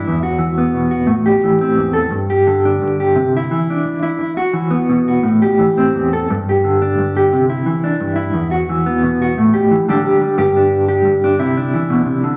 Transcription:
\new Staff \with { instrumentName = "Clean electric guitar" } { \time 12/8 \key g \major \tempo 4. = 117 << { e'8 fis'4 b4 fis'8 r8 g'4 c'4 a'8 | r8 g'4 d'4 g'8 r8 e'4 d'4 e'8~ | e'8 fis'4 b4 fis'8 r8 g'4 c'4 a'8 | r8 g'4 d'4 g'8 r8 e'4 d'4 e'8~ |
e'8 fis'4 b4 fis'8 r8 g'4 <g d' g'>8 g'4 | g'8 d'4 g'4 d'8 e'8 d'2~ d'8 | } \\ { e,4 e4 b,4 a,4 e4 e,4 | g,4 d4 g,4 c4 e2 | r4 e4 b,4 a,4 e4 e,4 | g,4 d4 g,4 c4 e4 g,4 |
e,4 e4 b,4 a,4 e8 d4 g8 | g,2 g,4 c4 e8 b,8 c8 d8 | } >> }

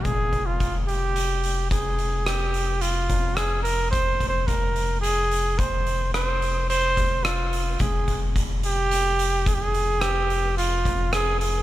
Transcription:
<<
  \new Staff \with { instrumentName = "Trumpet" } { \time 7/4 \key f \minor \tempo 4 = 108 aes'8. f'8. g'4. aes'4 g'4 f'4 aes'8 bes'8 | \tuplet 3/2 { c''4 c''8 } bes'4 aes'4 c''4 c''4 c''4 f'4 | aes'8. r8. g'4. aes'32 g'32 aes'8. g'4 f'4 aes'8 aes'8 | }
  \new Staff \with { instrumentName = "Analog synth bass" } { \clef bass \time 7/4 \key f \minor f,,1.~ f,,4~ | f,,1.~ f,,4 | f,,1.~ f,,4 | }
  \new DrumStaff \with { instrumentName = "Drums" } \drummode { \time 7/4 <hh bd>8 <hh bd>8 <hh bd>8 hh8 hh8 hh8 <hh bd>8 hh8 <hh ss>8 hh8 hh8 <hh bd>8 <hh ss>8 hh8 | <hh bd>8 <hh bd>8 <hh bd>8 hh8 hh8 hh8 <hh bd>8 hh8 <hh ss>8 hh8 hh8 <hh bd>8 <hh ss>8 hh8 | <hh bd>8 <hh bd>8 <hh bd>8 hh8 hh8 hh8 <hh bd>8 hh8 <hh ss>8 hh8 hh8 <hh bd>8 <hh ss>8 hh8 | }
>>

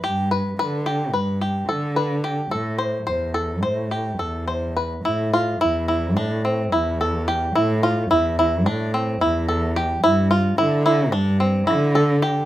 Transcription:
<<
  \new Staff \with { instrumentName = "Five-string banjo" } { \time 9/8 \key a \minor \tempo 4. = 72 g'8 b'8 b'8 g'8 b'8 g'8 a'8 b'8 g'8 | a'8 c''8 c''8 a'8 c''8 g'8 a'8 c''8 b'8 | e'8 f'8 e'8 e'8 d'8 c'8 e'8 a'8 g'8 | e'8 f'8 e'8 e'8 d'8 c'8 e'8 a'8 g'8 |
e'8 f'8 e'8 e'8 d'8 c'8 e'8 a'8 g'8 | }
  \new Staff \with { instrumentName = "Cello" } { \clef bass \time 9/8 \key a \minor g,4 d4 g,4 d4. | a,4 e,4 a,4 e,4. | a,4 e,4 a,4 e,4. | a,4 e,4 a,4 e,4. |
g,4 d4 g,4 d4. | }
>>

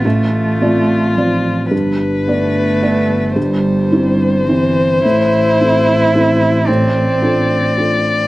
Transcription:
<<
  \new Staff \with { instrumentName = "Violin" } { \time 3/4 \key f \lydian \tempo 4 = 109 f'2. | b'2. | c''2.~ | c''2. |
d''2. | }
  \new Staff \with { instrumentName = "Felt piano" } { \time 3/4 \key f \lydian a,,4 <c' f' d''>4 <c' f' d''>4 | g,4 <b d' d''>4 <b d' d''>4 | g,4 <c' e' c''>4 <c' e' c''>4 | a,4 <c' e' a'>4 <c' e' a'>4 |
a,4 <d' f' a'>4 <d' f' a'>4 | }
  \new Staff \with { instrumentName = "Cello" } { \time 3/4 \key f \lydian a2 f4 | r4 a2 | g2 e4 | e'2. |
c'2. | }
  \new Staff \with { instrumentName = "Double bass" } { \clef bass \time 3/4 \key f \lydian a,,2. | g,,2.~ | g,,2. | a,,2.~ |
a,,2. | }
>>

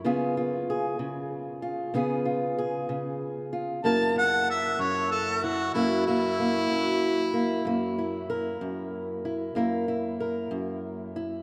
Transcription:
<<
  \new Staff \with { instrumentName = "Harmonica" } { \time 12/8 \key fis \mixolydian \tempo 4. = 63 r1. | a''8 fis''8 e''8 cis''8 a'8 fis'8 e'8 e'2~ e'8~ | e'8 r1 r4. | }
  \new Staff \with { instrumentName = "Steel-string acoustic guitar" } { \time 12/8 \key fis \mixolydian << { <b eis' gis'>8 eis'8 gis'4. eis'8 <b eis' gis'>8 eis'8 gis'4. eis'8 | <ais e' ais'>8 e'2 e'8 ais8 ais8 ais4. ais8 | ais8 e'8 ais'4. e'8 <ais e' ais'>8 e'8 ais'4. e'8 | } \\ { cis4. cis4. cis4. cis4. | fis,4. fis,4. fis,4. fis,4. | fis,4. fis,4. fis,4. fis,4. | } >> }
>>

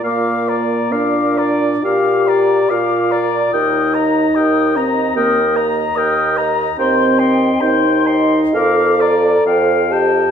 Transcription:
<<
  \new Staff \with { instrumentName = "Flute" } { \time 4/4 \key bes \major \tempo 4 = 71 d'''8 bes''8 d'''8 bes''8 d'''8 bes''8 d'''8 bes''8 | ees'''8 bes''8 ees'''8 bes''8 ees'''8 bes''8 ees'''8 bes''8 | c'''8 g''8 c'''8 g''8 d'''8 bes''8 g''8 a''8 | }
  \new Staff \with { instrumentName = "Oboe" } { \time 4/4 \key bes \major f''8 d''8 f''8 d''8 f''8 d''8 f''8 d''8 | g''8 bes''8 g''8 bes''8 g''8 bes''8 g''8 bes''8 | g''8 c'''8 g''8 c'''8 f''8 d''8 f''8 g''8 | }
  \new Staff \with { instrumentName = "Clarinet" } { \time 4/4 \key bes \major bes'8 d''8 bes'8 d''8 bes'8 d''8 bes'8 d''8 | bes'8 ees''8 bes'8 ees''8 bes'8 ees''8 bes'8 ees''8 | c''8 ees''8 c''8 ees''8 bes'8 d''8 c''8 ees''8 | }
  \new Staff \with { instrumentName = "French horn" } { \time 4/4 \key bes \major bes4 d'4 g'4 f'4 | ees'4. c'8 bes4. r8 | c'4 ees'4 a'4. g'8 | }
  \new Staff \with { instrumentName = "Bassoon" } { \clef bass \time 4/4 \key bes \major bes,4 bes,4 bes,4 bes,4 | ees,4 ees,4 ees,4 ees,4 | ees,4 ees,4 f,4 f,4 | }
>>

